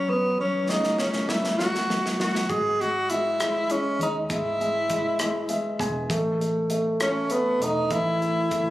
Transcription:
Already playing: grand piano F#3, tenor saxophone C#4
0.08 grand piano F#3, tenor saxophone B3
0.38 grand piano F#3, tenor saxophone C#4
0.69 grand piano C#3, tenor saxophone D#4, snare
0.84 snare
0.98 grand piano F#3, tenor saxophone C#4, snare
1.13 snare
1.29 grand piano F#3, tenor saxophone E4, snare
1.44 snare
1.58 grand piano F#3, tenor saxophone F#4, snare
1.75 snare
1.90 grand piano F#3, snare
2.06 snare
2.20 grand piano F#3, tenor saxophone F#4, snare
2.35 snare
2.50 fingered electric bass G#1, grand piano G#3, tenor saxophone G#4, kick, closed hi-hat
2.80 grand piano G#3, tenor saxophone F#4, closed hi-hat
3.10 grand piano G#3, tenor saxophone E4, closed hi-hat
3.40 grand piano G#3, cross-stick, closed hi-hat
3.69 grand piano G#3, tenor saxophone C#4, closed hi-hat
3.99 fingered electric bass D#2, grand piano G#3, tenor saxophone D#4, closed hi-hat
4.30 fingered electric bass G#1, grand piano G#3, tenor saxophone E4, kick, closed hi-hat
4.61 grand piano G#3, closed hi-hat
4.90 grand piano G#3, kick, closed hi-hat
5.19 grand piano G#3, cross-stick, closed hi-hat
5.49 grand piano G#3 E5, closed hi-hat
5.79 fingered electric bass E1, grand piano G#3 G#5, kick, closed hi-hat
6.10 fingered electric bass A1, grand piano A3, kick, closed hi-hat
6.40 grand piano A3, closed hi-hat
6.70 grand piano A3, closed hi-hat
7.00 grand piano A3, tenor saxophone C#4, cross-stick, closed hi-hat
7.30 grand piano A3, tenor saxophone B3, closed hi-hat
7.60 fingered electric bass E1, grand piano A3, tenor saxophone D#4, closed hi-hat
7.90 fingered electric bass A1, grand piano E3, tenor saxophone E4, kick, closed hi-hat
8.21 grand piano A3, closed hi-hat
8.51 grand piano A3, kick, closed hi-hat

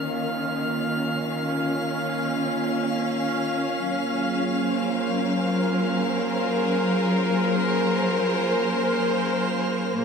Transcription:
Already playing: string section D#3 A#3 C#4 F5, synth drone A#3 F4, synth texture F6
3.81 string section F#3
4.12 string section G#4
4.63 string section C5
4.71 string section A#4
9.94 string section A#2, cello A#3, synth drone A#3 F4, synth texture D#6

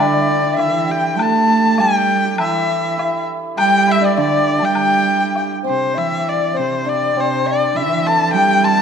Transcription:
Already playing: hammered dulcimer C4 E4 G4 A4
0.00 cello D3, hammered dulcimer D4, erhu D5
0.07 dizi E5
0.14 dizi D5
0.21 dizi E5
0.28 dizi D5
0.44 hammered dulcimer D4
0.54 cello E3, dizi E5
0.58 hammered dulcimer E4, erhu E5, low woodblock
0.86 hammered dulcimer G4, dizi G5
0.92 erhu G5
1.17 cello A3, hammered dulcimer A4, dizi A5, high woodblock
1.22 hammered dulcimer A4, erhu A5
1.35 hammered dulcimer A4
1.43 hammered dulcimer A4
1.50 hammered dulcimer A4
1.59 hammered dulcimer A4, dizi A5
1.67 hammered dulcimer A4
1.73 hammered dulcimer A4
1.78 cello G3, hammered dulcimer G4, dizi G5, erhu G5, low woodblock
2.25 hammered dulcimer G4
2.31 dizi G5
2.38 cello E3, hammered dulcimer E4, erhu E5, dizi G5, high woodblock
2.45 dizi E5
2.97 hammered dulcimer E4, dizi E5, low woodblock
3.57 cello G3, hammered dulcimer G4, dizi G5, erhu G5, high woodblock
3.87 hammered dulcimer E4, dizi E5
3.92 erhu E5
4.00 hammered dulcimer D4, dizi D5
4.05 erhu D5
4.15 cello D3, hammered dulcimer D4, dizi D5, low woodblock
4.19 erhu D5
4.59 cello G3, hammered dulcimer G4, dizi A5
4.63 dizi G5, erhu G5
4.75 high woodblock
5.36 low woodblock
5.63 cello C3, hammered dulcimer C4, dizi C5
5.69 erhu C5
5.95 cello E3, hammered dulcimer E4, dizi E5, erhu E5
6.17 dizi E5
6.25 erhu D5, dizi D5 E5
6.54 hammered dulcimer C4, dizi C5, erhu C5
6.59 cello C3
6.85 hammered dulcimer D4, dizi D5, erhu D5
7.17 cello C3, hammered dulcimer C4, dizi C5, erhu C5
7.21 dizi D5
7.31 dizi C5
7.45 hammered dulcimer D4, erhu D5, dizi E5
7.51 dizi D5
7.75 cello E3, hammered dulcimer E4, erhu E5, dizi E5
8.05 hammered dulcimer A4, erhu A5, dizi A5 C6
8.29 hammered dulcimer A4, erhu G5
8.34 cello G3, hammered dulcimer G4, dizi G5
8.64 hammered dulcimer A4, erhu A5, dizi C6
8.68 dizi A5

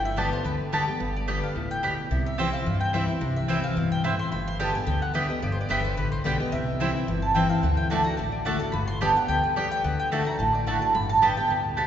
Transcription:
Already playing: upright bass G1, steel-string acoustic guitar G2
0.05 mandolin E5
0.16 steel-string acoustic guitar D3 G3 B3 G4, mandolin B3 G4 D5 A5
0.33 mandolin C5
0.44 upright bass D2, steel-string acoustic guitar D3, mandolin B4
0.72 steel-string acoustic guitar D3 G3 B3 G4, mandolin B3 G4 D5 A5
0.87 steel-string acoustic guitar B3 G4
1.00 upright bass G1, steel-string acoustic guitar G2
1.16 mandolin D5
1.28 steel-string acoustic guitar D3 G3 B3 G4, mandolin B3 G4 D5 G5
1.43 mandolin F5
1.56 upright bass D2, steel-string acoustic guitar A2
1.71 mandolin G5
1.83 steel-string acoustic guitar B2, mandolin B3 G4 D5 G5
2.11 upright bass C2, steel-string acoustic guitar C3
2.26 mandolin E5
2.38 steel-string acoustic guitar E3 G3 C4 E4, mandolin C4 E4 C5 G5
2.53 mandolin F5
2.66 steel-string acoustic guitar G2, upright bass G2
2.80 mandolin G5
2.93 steel-string acoustic guitar E3 G3 C4 E4, mandolin C4 E4 C5 E5 G5
3.08 steel-string acoustic guitar C4 E4
3.21 upright bass C2, steel-string acoustic guitar C3
3.36 mandolin E5
3.48 steel-string acoustic guitar E3 G3 C4 E4, mandolin C4 E4 C5 G5
3.64 mandolin F5
3.77 upright bass G2, steel-string acoustic guitar B2
3.92 mandolin G5
4.04 steel-string acoustic guitar A2, mandolin C4 E4 C5 E5 G5
4.19 mandolin C6
4.32 upright bass G1, steel-string acoustic guitar G2, mandolin B5
4.48 mandolin C6
4.59 steel-string acoustic guitar D3 G3 B3 G4, mandolin B3 G4 D5 G5 A5
4.74 steel-string acoustic guitar B3 G4, mandolin G#5
4.87 upright bass D2, steel-string acoustic guitar D3, mandolin G5
5.02 mandolin F#5
5.14 steel-string acoustic guitar D3 G3 B3 G4, mandolin B3 G4 D5 E5 G5
5.28 steel-string acoustic guitar B3 G4, mandolin D#5
5.42 upright bass G1, steel-string acoustic guitar G2, mandolin D5
5.52 mandolin C5
5.61 mandolin D5
5.69 upright bass G1, steel-string acoustic guitar D3 G3 B3 G4, mandolin B3 G4 D5 E5 G5
5.85 mandolin C5
5.97 upright bass A1, steel-string acoustic guitar D3, mandolin B4
6.12 mandolin C5
6.24 upright bass B1, steel-string acoustic guitar D3 G3 B3 G4, mandolin B3 G4 D5 G5
6.40 steel-string acoustic guitar B3 G4, mandolin D#5
6.52 upright bass C2, steel-string acoustic guitar C3, mandolin E5
6.80 steel-string acoustic guitar E3 G3 C4 E4, mandolin C4 E4 C5 G5
6.95 steel-string acoustic guitar C4 E4
7.08 upright bass G1, steel-string acoustic guitar G2
7.22 mandolin A5
7.34 steel-string acoustic guitar E3 G3 C4 E4, mandolin C4 E4 C5 G5
7.50 steel-string acoustic guitar C4 E4, mandolin F5
7.63 upright bass D2, steel-string acoustic guitar D3, mandolin F#5
7.77 mandolin G5
7.90 steel-string acoustic guitar D3 A3 D4 F#4, mandolin A3 F#4 D5 A5
8.04 steel-string acoustic guitar D4 F#4, mandolin A#5
8.17 upright bass A1, steel-string acoustic guitar A2, mandolin A5
8.32 mandolin D5
8.45 steel-string acoustic guitar D3 A3 D4 F#4, mandolin A3 F#4 D5 F#5 A5
8.60 steel-string acoustic guitar D4 F#4, mandolin A5
8.72 upright bass G1, steel-string acoustic guitar G2, mandolin B5
8.88 mandolin C6
9.01 steel-string acoustic guitar D3 G3 B3 G4, mandolin B3 G4 D5 G5 A5
9.16 steel-string acoustic guitar B3 G4, mandolin F#5
9.28 upright bass D2, steel-string acoustic guitar D3, mandolin G5
9.44 mandolin B4
9.56 steel-string acoustic guitar D3 G3 B3 G4, mandolin B3 G4 D5 G5
9.72 mandolin G5
9.84 upright bass D2, steel-string acoustic guitar D3, mandolin F#5
10.00 mandolin G5
10.12 steel-string acoustic guitar D3 A3 D4 F#4, mandolin A3 F#4 D5 A5
10.27 steel-string acoustic guitar D4 F#4, mandolin A#5
10.39 upright bass A1, steel-string acoustic guitar A2, mandolin A5
10.55 mandolin D5
10.66 steel-string acoustic guitar D3 A3 D4 F#4, mandolin A3 F#4 D5 F#5 A5
10.81 steel-string acoustic guitar D4 F#4, mandolin A5
10.95 upright bass G1, steel-string acoustic guitar G2, mandolin B5
11.09 mandolin A5
11.22 steel-string acoustic guitar D3 G3 B3 G4, mandolin B3 G4 D5 G5 A5
11.37 steel-string acoustic guitar B3 G4, mandolin G5
11.50 upright bass D2, steel-string acoustic guitar A2
11.77 steel-string acoustic guitar B2, mandolin B3 G4 D5 A5

